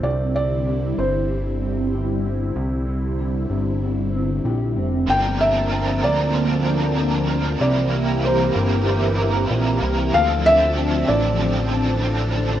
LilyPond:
<<
  \new Staff \with { instrumentName = "Felt piano" } { \time 4/4 \key c \mixolydian \tempo 4 = 95 d''8 d''4 c''2~ c''8~ | c''2. r4 | g''8 e''4 d''2~ d''8 | d''4 c''2 r4 |
f''8 e''4 d''2~ d''8 | }
  \new Staff \with { instrumentName = "Clean electric guitar" } { \time 4/4 \key c \mixolydian c8 c'8 d'8 c'8 d'8 c'8 g'8 c'8 | c8 c'8 d'8 c'8 d'8 c'8 g'8 c'8 | g,8 d'8 c'8 bes'8 c'8 d'8 bes'8 d'8 | c8 e'8 bes8 bes'8 bes8 e'8 bes'8 e'8 |
d8 d'8 c'8 a'8 c'8 d'8 a'8 d'8 | }
  \new Staff \with { instrumentName = "Overdriven electric guitar" } { \time 4/4 \key c \mixolydian r1 | r1 | <g, d f c' d' bes'>8 <f c' d' bes'>8 <f c' d' bes'>8 <f c' d' bes'>8 <g, d f c' d' bes'>8 <f c' d' bes'>8 <f c' d' bes'>8 <f c' d' bes'>8 | <c g bes e' bes'>8 <bes e' bes'>8 <g bes e' bes'>8 <bes e' bes'>8 <c g bes e' bes'>8 <bes e' bes'>8 <g bes e' bes'>8 <bes e' bes'>8 |
<d f c' d' a'>8 <c' d' a'>8 <f c' d' a'>8 <c' d' a'>8 <d f c' d' a'>8 <c' d' a'>8 <f c' d' a'>8 <c' d' a'>8 | }
  \new Staff \with { instrumentName = "Analog synth pad" } { \time 4/4 \key c \mixolydian << { <d g e'>1~ | <d g e'>1 | <f bes a''>1 | <e bes g'>1 |
<f a''>1 | } \\ { c'1~ | c'1 | c'1~ | c'1 |
d'1 | } >> }
  \new Staff \with { instrumentName = "Analog synth bass" } { \clef bass \time 4/4 \key c \mixolydian c,4. g,,2~ g,,8 | c,4. g,,4. bes,,8 f,,8 | g,,4. d,2~ d,8 | c,4. g,,4. bes,,8 c,8 |
d,4. a,,2~ a,,8 | }
>>